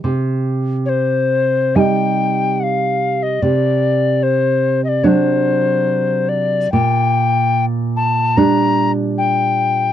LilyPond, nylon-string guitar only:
\new Staff \with { instrumentName = "Nylon-string guitar" } { \clef bass \time 4/4 \key g \minor \tempo 4 = 73 c2 <g ees'>2 | c2 <fis d'>2 | bes,2 <g d'>2 | }